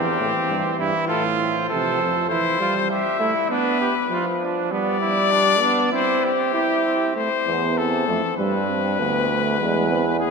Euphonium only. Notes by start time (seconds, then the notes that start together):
Already playing: E2
0.20 A2
0.50 G2
0.80 G2
1.10 A2
1.71 C3
2.02 F2
7.46 E2
8.07 F2
8.38 G2
8.99 D2
9.61 E2